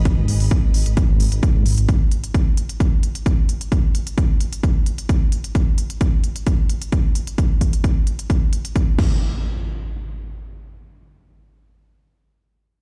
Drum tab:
CC |----------------|----------------|----------------|----------------|
HH |x-oox-oxx-oxx-ox|x-xxx-xxx-xxx-xx|x-xxx-xxx-xxx-xx|x-xxx-xxx-xxx-xx|
BD |o---o---o---o---|o---o---o---o---|o---o---o---o---|o---o---o---o---|

CC |--------------x-|----------------|----------------|
HH |x-xxx-xxx-xxx---|----------------|----------------|
BD |o-o-o---o---o-o-|----------------|----------------|